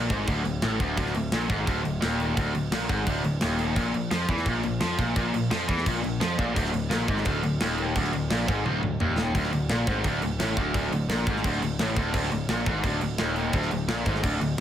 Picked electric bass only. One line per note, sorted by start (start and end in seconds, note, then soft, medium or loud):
0.10 0.26 G#1 medium
0.28 0.44 D1 loud
0.46 0.61 D1 medium
0.63 0.79 A1 loud
0.80 0.96 D1 loud
0.98 1.14 D1 loud
1.15 1.31 D1 medium
1.32 1.49 A#1 loud
1.49 1.66 G#1 loud
1.67 1.83 D1 loud
1.86 2.01 D1 medium
2.03 2.35 D#1 loud
2.37 2.53 D1 medium
2.55 2.71 D1 medium
2.72 2.88 A#1 medium
2.89 3.06 G#1 medium
3.07 3.23 D1 medium
3.24 3.40 D1 medium
3.42 3.74 D#1 medium
3.76 3.93 A#1 medium
3.94 4.10 A#1 medium
4.11 4.28 F2 medium
4.28 4.45 E2 medium
4.46 4.63 A#1 loud
4.64 4.81 A#1 medium
4.82 4.98 F2 medium
4.99 5.15 A#1 medium
5.16 5.33 A#1 medium
5.34 5.50 A#1 medium
5.52 5.68 F2 medium
5.69 5.85 E2 loud
5.86 6.02 A#1 medium
6.05 6.21 A#1 medium
6.22 6.38 F2 medium
6.39 6.55 A#1 medium
6.56 6.73 D1 medium
6.74 6.90 D1 medium
6.91 7.08 A#1 loud
7.08 7.25 G#1 loud
7.26 7.42 D1 medium
7.44 7.60 D1 medium
7.61 7.93 D#1 medium
7.96 8.12 D1 loud
8.14 8.30 D1 medium
8.31 8.47 A#1 loud
8.48 8.64 G#1 medium
8.66 8.82 D1 loud
8.83 8.99 D1 medium
9.00 9.33 D#1 medium
9.35 9.51 D1 medium
9.52 9.69 D1 medium
9.70 9.86 A#1 medium
9.87 10.04 G#1 medium
10.05 10.21 D1 medium
10.22 10.39 D1 medium
10.39 10.56 A1 loud
10.57 10.73 D1 loud
10.74 10.91 D1 loud
10.91 11.08 D1 medium
11.09 11.25 A#1 loud
11.27 11.43 G#1 medium
11.45 11.61 D1 medium
11.62 11.78 D1 medium
11.79 11.95 A1 medium
11.96 12.13 D1 medium
12.14 12.30 D1 loud
12.32 12.48 D1 medium
12.49 12.65 A#1 loud
12.66 12.83 G#1 loud
12.84 13.00 D1 medium
13.02 13.18 D1 medium
13.19 13.51 D#1 loud
13.53 13.70 D1 loud
13.71 13.87 D1 medium
13.88 14.05 A#1 loud
14.06 14.22 G#1 loud
14.23 14.40 D1 loud
14.41 14.57 D1 medium